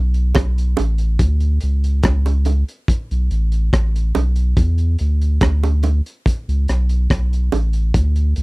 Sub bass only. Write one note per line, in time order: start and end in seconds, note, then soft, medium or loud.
0.00 0.33 B1 loud
0.36 0.75 B1 loud
0.79 1.18 A1 loud
1.20 1.59 D2 loud
1.63 2.02 C#2 medium
2.04 2.64 C#2 loud
3.11 3.30 B1 medium
3.31 3.70 A1 loud
3.74 4.12 A1 loud
4.16 4.55 B1 loud
4.58 4.97 E2 loud
5.01 5.39 D2 medium
5.42 6.01 D2 loud
6.48 6.67 C#2 medium
6.69 7.08 B1 loud
7.11 7.50 B1 medium
7.53 7.92 A1 loud
7.95 8.34 D2 loud
8.37 8.43 C#2 medium